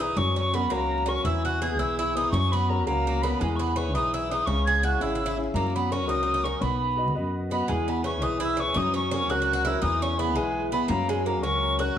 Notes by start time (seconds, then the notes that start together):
Already playing: E3
0.00 D#4 E4 G#4 B4 D#6
0.17 F#2 F#3 C#4 C#6
0.36 C#4 C#6
0.54 B3 C#4 F#4 A#4 B5
0.70 C#2 A#3 C#4 F#4 A#4 A#5
1.06 C#4 F#4 A#4 C#6
1.24 E2 E3 E4 E6
1.45 F#4 F#6
1.62 B3 E4 G#4 G#6
1.78 B1 B3 E4 G#4 E6
1.97 E4 E6
2.15 B3 D#4 E4 G#4 D#6
2.31 F#2 F#3 C#4 C#6
2.52 B3 B5
2.69 C#4 F#4 A#4 A#5
2.85 C#2 A#3 C#4 F#4 A#4 A#5
3.07 A#3
3.22 B3 C#4 F#4 A#4 B5
3.39 E2 E3 G#3 G#5
3.55 C#6
3.59 B3 B5
3.76 C#4 E4 G#4 B4 C#6
3.93 B1 D#4 E4 G#4 B4 D#6
4.13 E4 E6
4.29 D#4 E4 G#4 B4 D#6
4.46 C#2 C#3 C#4 C#6
4.65 G#4 G#6
4.83 C#4 E4 F#4 G#4 F#6
5.00 G#1 C#4 E4 G#4 E6
5.15 E4
5.26 E4
5.37 C#4 E4 G#4
5.54 F#2 F#3 A#3 A#5
5.74 B3 B5
5.91 C#4 F#4 A#4 C#6
6.07 C#2 C#4 D#4 F#4 A#4 D#6
6.23 D#4
6.34 D#4
6.43 C#4 F#4 A#4 C#6
6.54 C#6
6.61 B1 B3 B5
6.97 F#4 B4 D#5
7.15 F#2 F#4 B4 D#5
7.51 B3 F#4 B4 D#5 B5
7.68 E2 E3 G#3 G#5
7.88 B3 B5
8.04 C#4 E4 G#4 B4 C#6
8.22 B1 D#4 E4 G#4 B4 D#6
8.40 E4 E6
8.57 C#4 E4 G#4 B4 C#6
8.74 F#2 F#3 D#4 D#6
8.94 C#4 C#6
9.11 C#4 F#4 A#4 C#6
9.28 C#2 C#4 F#4 A#4 F#6
9.42 F#4
9.53 F#4
9.65 C#4 E4 F#4 A#4 E6
9.81 E2 E3 D#4 D#6
10.02 C#4 C#6
10.18 B3 E4 G#4 B4 B5
10.35 B1 G#3 E4 G#4 B4 G#5
10.71 B3 E4 G#4 B4 B5
10.85 F#2 A#3 A#5 B5
10.90 F#3
11.08 G#3 G#5
11.25 A#3 C#4 F#4 A#4 A#5
11.42 C#2 C#4 F#4 A#4 C#6
11.79 C#4 F#4 A#4 F#6